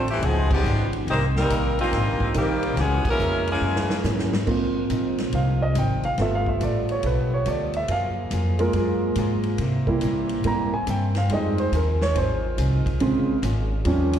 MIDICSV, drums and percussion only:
0, 0, Header, 1, 2, 480
1, 0, Start_track
1, 0, Key_signature, -4, "major"
1, 0, Tempo, 426136
1, 1208, Time_signature, 4, 2, 24, 8
1, 15984, End_track
2, 0, Start_track
2, 0, Title_t, "Drums"
2, 88, Note_on_c, 9, 51, 47
2, 201, Note_off_c, 9, 51, 0
2, 252, Note_on_c, 9, 36, 17
2, 253, Note_on_c, 9, 51, 59
2, 364, Note_off_c, 9, 36, 0
2, 365, Note_off_c, 9, 51, 0
2, 568, Note_on_c, 9, 49, 79
2, 570, Note_on_c, 9, 36, 87
2, 681, Note_off_c, 9, 49, 0
2, 683, Note_off_c, 9, 36, 0
2, 735, Note_on_c, 9, 44, 58
2, 848, Note_off_c, 9, 44, 0
2, 1046, Note_on_c, 9, 51, 49
2, 1159, Note_off_c, 9, 51, 0
2, 1210, Note_on_c, 9, 36, 20
2, 1213, Note_on_c, 9, 51, 60
2, 1323, Note_off_c, 9, 36, 0
2, 1326, Note_off_c, 9, 51, 0
2, 1536, Note_on_c, 9, 38, 59
2, 1648, Note_off_c, 9, 38, 0
2, 1689, Note_on_c, 9, 36, 19
2, 1692, Note_on_c, 9, 44, 57
2, 1692, Note_on_c, 9, 51, 69
2, 1802, Note_off_c, 9, 36, 0
2, 1805, Note_off_c, 9, 44, 0
2, 1805, Note_off_c, 9, 51, 0
2, 2013, Note_on_c, 9, 51, 47
2, 2125, Note_off_c, 9, 51, 0
2, 2166, Note_on_c, 9, 36, 21
2, 2170, Note_on_c, 9, 51, 61
2, 2174, Note_on_c, 9, 38, 39
2, 2278, Note_off_c, 9, 36, 0
2, 2283, Note_off_c, 9, 51, 0
2, 2286, Note_off_c, 9, 38, 0
2, 2481, Note_on_c, 9, 36, 61
2, 2594, Note_off_c, 9, 36, 0
2, 2639, Note_on_c, 9, 44, 59
2, 2639, Note_on_c, 9, 51, 65
2, 2640, Note_on_c, 9, 36, 23
2, 2751, Note_off_c, 9, 44, 0
2, 2751, Note_off_c, 9, 51, 0
2, 2752, Note_off_c, 9, 36, 0
2, 2958, Note_on_c, 9, 51, 49
2, 3071, Note_off_c, 9, 51, 0
2, 3117, Note_on_c, 9, 36, 19
2, 3120, Note_on_c, 9, 51, 58
2, 3123, Note_on_c, 9, 38, 37
2, 3230, Note_off_c, 9, 36, 0
2, 3232, Note_off_c, 9, 51, 0
2, 3236, Note_off_c, 9, 38, 0
2, 3435, Note_on_c, 9, 36, 79
2, 3436, Note_on_c, 9, 49, 73
2, 3548, Note_off_c, 9, 36, 0
2, 3549, Note_off_c, 9, 49, 0
2, 3595, Note_on_c, 9, 44, 54
2, 3708, Note_off_c, 9, 44, 0
2, 3913, Note_on_c, 9, 51, 46
2, 4026, Note_off_c, 9, 51, 0
2, 4234, Note_on_c, 9, 38, 56
2, 4346, Note_off_c, 9, 38, 0
2, 4395, Note_on_c, 9, 38, 74
2, 4508, Note_off_c, 9, 38, 0
2, 4549, Note_on_c, 9, 44, 58
2, 4552, Note_on_c, 9, 38, 62
2, 4661, Note_off_c, 9, 44, 0
2, 4665, Note_off_c, 9, 38, 0
2, 4720, Note_on_c, 9, 38, 70
2, 4832, Note_off_c, 9, 38, 0
2, 4879, Note_on_c, 9, 38, 89
2, 4992, Note_off_c, 9, 38, 0
2, 5035, Note_on_c, 9, 49, 72
2, 5036, Note_on_c, 9, 36, 69
2, 5148, Note_off_c, 9, 49, 0
2, 5149, Note_off_c, 9, 36, 0
2, 5516, Note_on_c, 9, 44, 49
2, 5516, Note_on_c, 9, 51, 62
2, 5520, Note_on_c, 9, 36, 21
2, 5629, Note_off_c, 9, 44, 0
2, 5629, Note_off_c, 9, 51, 0
2, 5632, Note_off_c, 9, 36, 0
2, 5838, Note_on_c, 9, 51, 47
2, 5842, Note_on_c, 9, 38, 48
2, 5951, Note_off_c, 9, 51, 0
2, 5954, Note_off_c, 9, 38, 0
2, 5997, Note_on_c, 9, 51, 60
2, 6000, Note_on_c, 9, 36, 23
2, 6110, Note_off_c, 9, 51, 0
2, 6113, Note_off_c, 9, 36, 0
2, 6478, Note_on_c, 9, 44, 55
2, 6478, Note_on_c, 9, 51, 65
2, 6481, Note_on_c, 9, 36, 18
2, 6591, Note_off_c, 9, 44, 0
2, 6591, Note_off_c, 9, 51, 0
2, 6593, Note_off_c, 9, 36, 0
2, 6796, Note_on_c, 9, 51, 43
2, 6909, Note_off_c, 9, 51, 0
2, 6956, Note_on_c, 9, 51, 55
2, 6959, Note_on_c, 9, 38, 37
2, 6961, Note_on_c, 9, 36, 23
2, 7069, Note_off_c, 9, 51, 0
2, 7072, Note_off_c, 9, 38, 0
2, 7073, Note_off_c, 9, 36, 0
2, 7281, Note_on_c, 9, 36, 51
2, 7394, Note_off_c, 9, 36, 0
2, 7440, Note_on_c, 9, 44, 49
2, 7440, Note_on_c, 9, 51, 60
2, 7443, Note_on_c, 9, 36, 20
2, 7553, Note_off_c, 9, 44, 0
2, 7553, Note_off_c, 9, 51, 0
2, 7556, Note_off_c, 9, 36, 0
2, 7757, Note_on_c, 9, 51, 45
2, 7870, Note_off_c, 9, 51, 0
2, 7915, Note_on_c, 9, 51, 62
2, 7921, Note_on_c, 9, 36, 20
2, 8028, Note_off_c, 9, 51, 0
2, 8034, Note_off_c, 9, 36, 0
2, 8398, Note_on_c, 9, 44, 53
2, 8398, Note_on_c, 9, 51, 60
2, 8404, Note_on_c, 9, 36, 21
2, 8511, Note_off_c, 9, 44, 0
2, 8511, Note_off_c, 9, 51, 0
2, 8516, Note_off_c, 9, 36, 0
2, 8712, Note_on_c, 9, 51, 45
2, 8825, Note_off_c, 9, 51, 0
2, 8878, Note_on_c, 9, 51, 65
2, 8883, Note_on_c, 9, 36, 20
2, 8990, Note_off_c, 9, 51, 0
2, 8996, Note_off_c, 9, 36, 0
2, 9358, Note_on_c, 9, 44, 52
2, 9358, Note_on_c, 9, 51, 64
2, 9362, Note_on_c, 9, 36, 23
2, 9470, Note_off_c, 9, 44, 0
2, 9470, Note_off_c, 9, 51, 0
2, 9474, Note_off_c, 9, 36, 0
2, 9674, Note_on_c, 9, 51, 47
2, 9787, Note_off_c, 9, 51, 0
2, 9836, Note_on_c, 9, 51, 60
2, 9840, Note_on_c, 9, 36, 20
2, 9948, Note_off_c, 9, 51, 0
2, 9953, Note_off_c, 9, 36, 0
2, 10312, Note_on_c, 9, 44, 59
2, 10312, Note_on_c, 9, 51, 66
2, 10319, Note_on_c, 9, 36, 23
2, 10425, Note_off_c, 9, 44, 0
2, 10425, Note_off_c, 9, 51, 0
2, 10432, Note_off_c, 9, 36, 0
2, 10627, Note_on_c, 9, 51, 47
2, 10739, Note_off_c, 9, 51, 0
2, 10792, Note_on_c, 9, 51, 65
2, 10799, Note_on_c, 9, 36, 23
2, 10905, Note_off_c, 9, 51, 0
2, 10912, Note_off_c, 9, 36, 0
2, 11118, Note_on_c, 9, 36, 50
2, 11231, Note_off_c, 9, 36, 0
2, 11274, Note_on_c, 9, 44, 57
2, 11274, Note_on_c, 9, 51, 63
2, 11281, Note_on_c, 9, 36, 23
2, 11387, Note_off_c, 9, 44, 0
2, 11387, Note_off_c, 9, 51, 0
2, 11394, Note_off_c, 9, 36, 0
2, 11593, Note_on_c, 9, 51, 48
2, 11706, Note_off_c, 9, 51, 0
2, 11758, Note_on_c, 9, 51, 60
2, 11763, Note_on_c, 9, 36, 23
2, 11871, Note_off_c, 9, 51, 0
2, 11876, Note_off_c, 9, 36, 0
2, 12241, Note_on_c, 9, 44, 60
2, 12241, Note_on_c, 9, 51, 63
2, 12244, Note_on_c, 9, 36, 24
2, 12354, Note_off_c, 9, 44, 0
2, 12354, Note_off_c, 9, 51, 0
2, 12357, Note_off_c, 9, 36, 0
2, 12555, Note_on_c, 9, 51, 46
2, 12559, Note_on_c, 9, 38, 50
2, 12668, Note_off_c, 9, 51, 0
2, 12671, Note_off_c, 9, 38, 0
2, 12722, Note_on_c, 9, 51, 62
2, 12726, Note_on_c, 9, 36, 26
2, 12835, Note_off_c, 9, 51, 0
2, 12838, Note_off_c, 9, 36, 0
2, 13045, Note_on_c, 9, 51, 42
2, 13157, Note_off_c, 9, 51, 0
2, 13207, Note_on_c, 9, 36, 23
2, 13208, Note_on_c, 9, 44, 53
2, 13208, Note_on_c, 9, 51, 67
2, 13320, Note_off_c, 9, 36, 0
2, 13321, Note_off_c, 9, 44, 0
2, 13321, Note_off_c, 9, 51, 0
2, 13533, Note_on_c, 9, 38, 61
2, 13645, Note_off_c, 9, 38, 0
2, 13688, Note_on_c, 9, 36, 20
2, 13691, Note_on_c, 9, 51, 62
2, 13801, Note_off_c, 9, 36, 0
2, 13804, Note_off_c, 9, 51, 0
2, 14167, Note_on_c, 9, 36, 22
2, 14169, Note_on_c, 9, 44, 52
2, 14169, Note_on_c, 9, 51, 67
2, 14280, Note_off_c, 9, 36, 0
2, 14282, Note_off_c, 9, 44, 0
2, 14282, Note_off_c, 9, 51, 0
2, 14486, Note_on_c, 9, 36, 61
2, 14491, Note_on_c, 9, 51, 48
2, 14598, Note_off_c, 9, 36, 0
2, 14603, Note_off_c, 9, 51, 0
2, 14644, Note_on_c, 9, 36, 25
2, 14644, Note_on_c, 9, 51, 57
2, 14757, Note_off_c, 9, 36, 0
2, 14757, Note_off_c, 9, 51, 0
2, 15123, Note_on_c, 9, 36, 20
2, 15125, Note_on_c, 9, 44, 58
2, 15125, Note_on_c, 9, 51, 64
2, 15236, Note_off_c, 9, 36, 0
2, 15238, Note_off_c, 9, 44, 0
2, 15238, Note_off_c, 9, 51, 0
2, 15599, Note_on_c, 9, 51, 66
2, 15601, Note_on_c, 9, 36, 23
2, 15712, Note_off_c, 9, 51, 0
2, 15714, Note_off_c, 9, 36, 0
2, 15919, Note_on_c, 9, 51, 76
2, 15984, Note_off_c, 9, 51, 0
2, 15984, End_track
0, 0, End_of_file